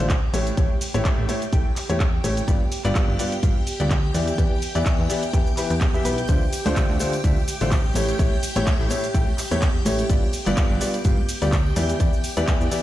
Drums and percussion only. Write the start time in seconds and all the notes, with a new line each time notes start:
0.10 kick, clap, closed hi-hat, cabasa
0.34 open hi-hat, cabasa
0.47 closed hi-hat, cabasa
0.57 kick, closed hi-hat, cabasa
0.81 open hi-hat, cabasa
0.94 closed hi-hat, cabasa
1.05 kick, clap, closed hi-hat, cabasa
1.29 open hi-hat, cabasa
1.42 closed hi-hat, cabasa
1.53 kick, closed hi-hat, cabasa
1.76 clap, open hi-hat, cabasa
1.90 closed hi-hat, cabasa
2.00 kick, clap, closed hi-hat, cabasa
2.24 open hi-hat, cabasa
2.37 closed hi-hat, cabasa
2.48 kick, closed hi-hat, cabasa
2.72 open hi-hat, cabasa
2.84 clap, closed hi-hat, cabasa
2.95 kick, clap, closed hi-hat, cabasa
3.19 open hi-hat, cabasa
3.32 closed hi-hat, cabasa
3.43 kick, closed hi-hat, cabasa
3.67 open hi-hat, cabasa
3.80 closed hi-hat, cabasa
3.90 kick, clap, closed hi-hat, cabasa
4.14 open hi-hat, cabasa
4.28 closed hi-hat, cabasa
4.38 kick, closed hi-hat, cabasa
4.62 open hi-hat, cabasa
4.75 closed hi-hat, cabasa
4.86 kick, clap, closed hi-hat, cabasa
5.10 open hi-hat, cabasa
5.23 closed hi-hat, cabasa
5.33 kick, closed hi-hat, cabasa
5.47 cabasa
5.57 clap, open hi-hat, cabasa
5.70 closed hi-hat, cabasa
5.81 kick, clap, closed hi-hat, cabasa
5.94 cabasa
6.05 open hi-hat, cabasa
6.18 closed hi-hat, cabasa
6.27 kick, closed hi-hat, tambourine, cabasa
6.41 tambourine
6.53 open hi-hat, tambourine, cabasa
6.66 clap, closed hi-hat, tambourine, high conga, cabasa
6.76 kick, clap, closed hi-hat, tambourine, cabasa
6.90 tambourine
6.99 open hi-hat, tambourine, cabasa
7.12 closed hi-hat, tambourine, cabasa
7.24 kick, closed hi-hat, tambourine, cabasa
7.37 tambourine, high conga
7.48 open hi-hat, tambourine, cabasa
7.61 closed hi-hat, tambourine, cabasa
7.71 kick, clap, closed hi-hat, tambourine, cabasa
7.84 tambourine
7.94 open hi-hat, tambourine, high conga, cabasa
8.09 closed hi-hat, tambourine, cabasa
8.19 kick, closed hi-hat, tambourine, cabasa
8.32 tambourine
8.43 open hi-hat, tambourine, cabasa
8.56 closed hi-hat, tambourine, high conga, cabasa
8.67 kick, clap, closed hi-hat, tambourine, cabasa
8.80 tambourine
8.90 open hi-hat, tambourine, cabasa
9.03 closed hi-hat, tambourine, cabasa
9.14 kick, closed hi-hat, tambourine, cabasa
9.27 tambourine, high conga
9.38 clap, open hi-hat, tambourine, cabasa
9.51 closed hi-hat, tambourine, cabasa
9.62 kick, clap, closed hi-hat, tambourine, cabasa
9.76 tambourine
9.85 open hi-hat, tambourine, high conga, cabasa
9.99 closed hi-hat, tambourine, cabasa
10.10 kick, closed hi-hat, tambourine, cabasa
10.23 tambourine
10.33 open hi-hat, tambourine, cabasa
10.46 clap, closed hi-hat, tambourine, high conga, cabasa
10.57 kick, clap, closed hi-hat, tambourine, cabasa
10.71 tambourine
10.81 open hi-hat, tambourine, cabasa
10.94 closed hi-hat, tambourine, cabasa
11.04 kick, closed hi-hat, tambourine, cabasa
11.17 tambourine, high conga
11.29 open hi-hat, tambourine, cabasa
11.42 closed hi-hat, tambourine, cabasa
11.52 kick, clap, closed hi-hat, tambourine, cabasa
11.66 tambourine
11.76 open hi-hat, tambourine, high conga, cabasa
11.89 closed hi-hat, tambourine, cabasa
12.00 kick, closed hi-hat, tambourine, cabasa
12.13 tambourine, cabasa
12.24 open hi-hat, tambourine, cabasa
12.37 closed hi-hat, tambourine, high conga, cabasa
12.47 kick, clap, closed hi-hat, tambourine, cabasa
12.61 tambourine, cabasa
12.71 open hi-hat, tambourine, cabasa